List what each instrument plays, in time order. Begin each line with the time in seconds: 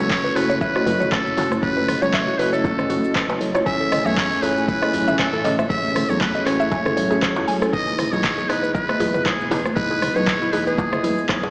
Already playing: analog synth pad A3 C#4 E4 F#4 C#5
0.00 analog synth bass C#2, tine electric piano C#4 E4 F#4 A4 C#5, muted trumpet C#5, djembe tone
0.10 kick, clap, shaker
0.24 synth pluck B4, djembe tone, shaker
0.35 analog synth bass F#1, tine electric piano C#4 E4 F#4 A4 C#5, muted trumpet B4, cross-stick, open hi-hat, djembe slap, high conga
0.50 synth pluck C#5, shaker
0.61 muted trumpet B4, synth pluck E5, kick, djembe tone, shaker
0.75 tine electric piano C#4 E4 F#4 A4 D#5, synth pluck F#4, cross-stick, high conga, shaker
0.86 analog synth bass F#1, synth pluck B4, open hi-hat, djembe tone, low conga, djembe bass
1.00 synth pluck C#5, mid tom, shaker
1.12 tine electric piano C#4 A4 B4, muted trumpet A4, kick, cross-stick, clap, djembe tone, high conga, shaker
1.26 analog synth bass F#1, shaker
1.37 tine electric piano C#4 E4 F#4 A4 C#5, synth pluck F#4, open hi-hat, mid tom, djembe slap
1.51 cross-stick, high conga, djembe tone, shaker
1.63 analog synth bass F#1, tine electric piano C#4 E4 F#4 A4 C#5, muted trumpet B4, analog synth pad D#5, kick, shaker
1.77 synth pluck B4, djembe tone, shaker
1.88 cross-stick, open hi-hat, mid tom
2.01 analog synth bass C#2, tine electric piano C#4 E4 F#4 A4 C#5, synth pluck C#5, muted trumpet C#5, djembe tone, high conga, low conga, shaker
2.14 synth pluck E5, kick, clap, shaker
2.27 synth pluck F#4, shaker
2.39 analog synth bass F#1, tine electric piano C#4 E4 F#4 A4 C#5, synth pluck B4, muted trumpet B4, open hi-hat, djembe slap, high conga, djembe tone
2.53 muted trumpet A4, synth pluck C#5, shaker
2.64 kick, djembe slap, high conga, djembe tone, djembe bass, shaker
2.79 tine electric piano C#4 E4 F#4 A4 D#5, cross-stick, mid tom, shaker
2.89 analog synth bass F#1, synth pluck F#4, open hi-hat, high conga, djembe tone, low conga
3.04 shaker
3.15 tine electric piano C#4 E4 F#4 A4 B4, kick, cross-stick, clap, low conga, shaker
3.29 analog synth bass F#1, synth pluck B4, djembe slap, djembe tone, shaker
3.41 tine electric piano C#4 E4 F#4 A4 C#5, open hi-hat, high conga, low conga
3.55 synth pluck C#5, cross-stick, djembe tone, shaker
3.66 analog synth bass A1, analog synth pad A3 C#5 G#5, tine electric piano C#4 E4 G#4 A4 C#5, muted trumpet E5, synth pluck G#5, kick, shaker
3.80 synth pluck A4, high conga, djembe tone, shaker
3.92 synth pluck D#5, cross-stick, open hi-hat, mid tom
4.05 analog synth bass E2, tine electric piano C#4 E4 G#4 A4 C#5, muted trumpet C#5, synth pluck E5, high conga, low conga, shaker
4.17 kick, clap, djembe tone, shaker
4.32 shaker
4.42 analog synth bass A1, tine electric piano C#4 E4 G#4 A4 C#5, synth pluck A4, muted trumpet B4, open hi-hat, djembe slap, high conga, djembe tone
4.57 shaker
4.68 muted trumpet B4, kick, djembe tone, shaker
4.82 tine electric piano C#4 E4 G#4 A4 E5, synth pluck D#5, cross-stick, high conga, shaker
4.93 analog synth bass A1, open hi-hat, low conga, djembe bass
5.08 synth pluck E5, mid tom, djembe tone, shaker
5.19 tine electric piano C#4 E4 B4, muted trumpet A4, synth pluck G#5, kick, cross-stick, clap, high conga, shaker
5.33 analog synth bass A1, synth pluck A4, djembe tone, shaker
5.44 tine electric piano C#4 E4 G#4 A4 C#5, synth pluck D#5, open hi-hat, mid tom, djembe slap
5.59 synth pluck E5, cross-stick, djembe tone, high conga, shaker
5.70 analog synth bass A1, tine electric piano C#4 E4 G#4 A4 C#5, analog synth pad F#4, muted trumpet E5, kick, shaker
5.84 high conga, shaker
5.95 synth pluck A4, cross-stick, open hi-hat, mid tom, djembe tone
6.09 analog synth bass E2, tine electric piano C#4 E4 G#4 A4 C#5, muted trumpet C#5, high conga, low conga, shaker
6.21 muted trumpet B4, kick, clap, djembe tone, shaker
6.35 synth pluck D#5, shaker
6.46 analog synth bass A1, tine electric piano C#4 E4 G#4 A4 C#5, muted trumpet C#5, cross-stick, clap, open hi-hat, djembe slap, djembe tone, high conga
6.60 synth pluck E5, shaker
6.71 synth pluck G#5, kick, djembe slap, high conga, djembe bass, shaker
6.85 tine electric piano C#4 E4 G#4 A4 E5, synth pluck A4, cross-stick, mid tom, djembe tone, shaker
6.97 analog synth bass A1, synth pluck C#5, open hi-hat, high conga, low conga
7.10 tine electric piano C#4 E4 G#4 A4 E5, synth pluck G#4, djembe tone, shaker
7.22 tine electric piano C#4 G#4 A4 C#5, synth pluck G#4, kick, cross-stick, clap, low conga, shaker
7.36 analog synth bass E2, djembe slap, djembe tone, shaker
7.48 synth pluck G#5, open hi-hat, high conga, low conga
7.62 synth pluck A4, cross-stick, shaker
7.73 analog synth bass E1, analog synth pad E3 G#3 B3 B4, tine electric piano D#4 E4 G#4 B4 D#5, muted trumpet D#5, kick, shaker
7.87 high conga, djembe tone, shaker
7.98 synth pluck E4, cross-stick, open hi-hat, mid tom
8.12 analog synth bass B1, tine electric piano D#4 E4 G#4 B4 D#5, muted trumpet C#5, high conga, djembe tone, low conga, shaker
8.24 kick, clap, shaker
8.38 synth pluck G#4, djembe tone, shaker
8.49 analog synth bass E1, tine electric piano D#4 E4 G#4 B4 D#5, muted trumpet B4, cross-stick, open hi-hat, djembe slap, high conga
8.63 synth pluck B4, shaker
8.74 muted trumpet B4, synth pluck D#5, kick, djembe tone, shaker
8.89 tine electric piano E4 G#4 B4 D#5 E5, synth pluck E4, cross-stick, high conga, shaker
9.00 analog synth bass E1, synth pluck G#4, open hi-hat, djembe tone, low conga, djembe bass
9.14 synth pluck B4, mid tom, shaker
9.25 tine electric piano D#4 E4 G#4 B4 C#5, muted trumpet G#4, kick, cross-stick, clap, djembe tone, high conga, shaker
9.40 analog synth bass E1, shaker
9.51 tine electric piano D#4 E4 G#4 B4 D#5, synth pluck E4, open hi-hat, mid tom, djembe slap
9.65 cross-stick, djembe tone, high conga, shaker
9.76 analog synth bass E1, tine electric piano D#4 E4 G#4 B4 D#5, muted trumpet B4, kick, shaker
9.90 synth pluck G#4, djembe tone, shaker
10.02 cross-stick, open hi-hat, mid tom
10.16 analog synth bass B1, tine electric piano D#4 E4 G#4 B4 D#5, synth pluck B4, muted trumpet C#5, high conga, djembe tone, low conga, shaker
10.27 kick, clap, shaker
10.42 synth pluck E4, shaker
10.53 analog synth bass E1, tine electric piano D#4 E4 G#4 B4 D#5, synth pluck G#4, muted trumpet B4, open hi-hat, djembe slap, high conga, djembe tone
10.67 muted trumpet G#4, synth pluck B4, shaker
10.78 kick, djembe slap, high conga, djembe tone, djembe bass, shaker
10.92 tine electric piano E4 G#4 B4 D#5 E5, cross-stick, mid tom, shaker
11.03 analog synth bass E1, synth pluck E4, open hi-hat, high conga, djembe tone, low conga
11.18 shaker
11.29 tine electric piano D#4 E4 G#4 B4 C#5, kick, cross-stick, clap, low conga, shaker
11.43 analog synth bass E1, synth pluck G#4, djembe slap, djembe tone, shaker